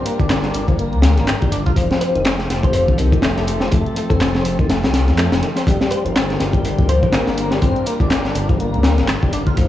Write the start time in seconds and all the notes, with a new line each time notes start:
Already playing: G3 D4 F4 A#4
0.05 A#3, closed hi-hat
0.19 G1 D4, kick, closed hi-hat
0.30 snare, clap, closed hi-hat
0.43 snare, closed hi-hat
0.54 G1, closed hi-hat
0.68 F3, kick, closed hi-hat
0.79 A#3, closed hi-hat
0.93 D2, closed hi-hat
1.02 snare, closed hi-hat
1.17 G1, snare, closed hi-hat
1.27 snare, clap, closed hi-hat
1.42 G1 G3, kick, closed hi-hat
1.52 D4, closed hi-hat
1.66 F4, kick, closed hi-hat
1.76 F1 F3 C4 G4 A4, kick, closed hi-hat
1.91 F3, snare, closed hi-hat
2.01 C5, closed hi-hat
2.15 F1 D#3, closed hi-hat
2.25 snare, clap, closed hi-hat
2.39 snare, closed hi-hat
2.50 F1, snare, closed hi-hat
2.63 F3 C5, kick, closed hi-hat
2.73 C5, closed hi-hat
2.88 C2, kick, closed hi-hat
2.98 D#3, closed hi-hat
3.12 F1, kick, closed hi-hat
3.22 A3, snare, clap, closed hi-hat
3.37 F1, snare, closed hi-hat
3.47 closed hi-hat
3.60 F3, snare, closed hi-hat
3.72 F1 A3 F4, kick, closed hi-hat
3.86 closed hi-hat
3.96 A3, closed hi-hat
4.10 F1 C4 A4, kick, closed hi-hat
4.21 snare, clap, closed hi-hat
4.35 snare, closed hi-hat
4.45 F1, closed hi-hat
4.59 D#3, kick, closed hi-hat
4.70 A3, snare, closed hi-hat
4.83 C2, snare, closed hi-hat
4.93 snare, closed hi-hat
5.08 F2, snare, closed hi-hat
5.18 A3, snare, clap, closed hi-hat
5.32 F1 C4, snare, closed hi-hat
5.42 D#3, snare, closed hi-hat
5.56 C4, snare, closed hi-hat
5.67 G1 G3 D4 A#4, kick, closed hi-hat
5.81 G3, snare, closed hi-hat
5.91 C5, closed hi-hat
6.05 G1 F3, closed hi-hat
6.16 snare, clap, closed hi-hat
6.30 snare, closed hi-hat
6.40 G1, snare, closed hi-hat
6.53 G3, kick, closed hi-hat
6.65 closed hi-hat
6.78 D2, kick, closed hi-hat
6.89 F3 C5, closed hi-hat
7.03 G1 C5, kick, closed hi-hat
7.12 A#3, snare, clap, closed hi-hat
7.27 G1, snare, closed hi-hat
7.37 closed hi-hat
7.51 G3, snare, closed hi-hat
7.62 G1 C4, kick, closed hi-hat
7.76 closed hi-hat
7.86 A#3, closed hi-hat
8.00 G1 D4, kick, closed hi-hat
8.11 snare, clap, closed hi-hat
8.25 snare, closed hi-hat
8.35 G1, closed hi-hat
8.49 F3, kick, closed hi-hat
8.60 A#3, closed hi-hat
8.73 D2, closed hi-hat
8.83 snare, closed hi-hat
8.98 G1, snare, closed hi-hat
9.08 snare, clap, closed hi-hat
9.22 G1 G3, kick, closed hi-hat
9.33 D4, closed hi-hat
9.47 F4, kick, closed hi-hat
9.57 F1 F3 C4 G4 A4, kick, closed hi-hat